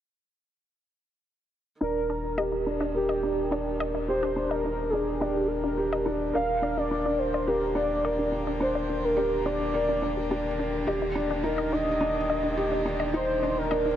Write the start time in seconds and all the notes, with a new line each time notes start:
1.81 D#1 D#3 D4 D#4 A#4
2.10 D4
2.37 G4 D#5
2.48 A#3
2.52 D#4
2.66 D4
2.81 D4
2.94 G4 A#4
3.09 D#5
3.23 D4 D#4
3.44 D3
3.51 D4
3.62 G4
3.80 D#5
3.95 D#4
4.08 G4 C5
4.23 D4
4.36 D4
4.49 A#4 D#5
4.64 D#4 A#4
4.90 D4 G#4
5.18 D4 G4 D#5
5.35 D#4
5.47 A#4
5.64 D4
5.77 G4
5.93 D#5
6.05 D4 D#4
6.33 D#1 D4 A#4 F5
6.62 D4 D5
6.77 D4 D5
6.91 D4
7.06 D4
7.18 C5
7.34 D5
7.47 D4 G4 A#4
7.75 D4 D5
8.04 A#4 D5
8.19 D4
8.32 D4
8.47 D4
8.60 D4 C5
8.75 D5
8.89 D4
9.04 A#4
9.16 D4 G4
9.45 D4 D5
9.60 D4
9.74 A#4
9.89 D4
10.02 D4
10.17 G4
10.31 D4 G4
10.59 D4
10.87 D#1 D#3 G4 D#5
11.02 D#4
11.15 D4
11.30 D4
11.43 D#4 A#4
11.58 D#5
11.72 D4 D#4 D#5
12.01 D4
12.30 D#5
12.43 D#4
12.57 G4
12.71 D4
12.85 D4
13.00 D#5
13.14 D#4 C5
13.43 D4
13.58 A#4
13.71 D4 D#5
13.85 D#4